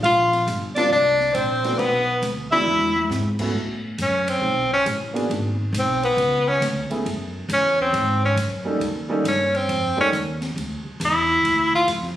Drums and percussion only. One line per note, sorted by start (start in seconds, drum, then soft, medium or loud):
0.04 ride medium
0.33 snare soft
0.33 ride soft
0.48 hi-hat pedal medium
0.48 ride medium
0.76 snare soft
0.76 ride medium
1.20 snare soft
1.35 hi-hat pedal medium
1.35 ride medium
1.64 snare medium
1.64 ride medium
1.79 ride medium
2.22 snare soft
2.22 hi-hat pedal medium
2.22 ride medium
2.52 kick medium
2.67 high tom soft
2.82 high tom medium
2.96 high tom medium
3.11 snare medium
3.11 hi-hat pedal medium
3.39 kick medium
3.39 crash medium
3.98 hi-hat pedal soft
3.98 ride medium
4.28 ride medium
4.86 hi-hat pedal medium
4.86 ride medium
5.16 ride soft
5.31 ride soft
5.74 hi-hat pedal medium
5.74 ride medium
6.03 ride soft
6.18 ride medium
6.62 snare soft
6.62 hi-hat pedal medium
6.62 ride medium
6.90 kick medium
6.90 ride soft
7.06 ride medium
7.49 hi-hat pedal medium
7.49 ride medium
7.78 kick soft
7.94 ride medium
8.22 kick soft
8.37 hi-hat pedal medium
8.37 ride medium
8.81 ride medium
9.25 hi-hat pedal soft
9.25 ride medium
9.55 ride soft
9.69 ride medium
10.13 hi-hat pedal medium
10.13 ride medium
10.42 snare soft
10.42 ride soft
10.58 ride medium
11.01 hi-hat pedal medium
11.01 ride medium
11.45 ride medium
11.73 kick medium
11.88 hi-hat pedal medium
11.88 ride medium
12.03 snare soft